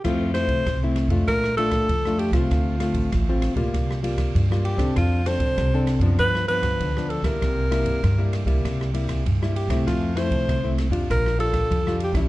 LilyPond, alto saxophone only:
\new Staff \with { instrumentName = "Alto saxophone" } { \time 4/4 \key f \major \tempo 4 = 98 f'8 c''4 r8 bes'8 a'4 g'16 f'16~ | f'4.~ f'16 r4. r16 g'8 | f'8 c''4 r8 b'8 b'4 a'16 bes'16~ | bes'4.~ bes'16 r4. r16 g'8 |
f'8 c''4 r8 bes'8 a'4 g'16 e'16 | }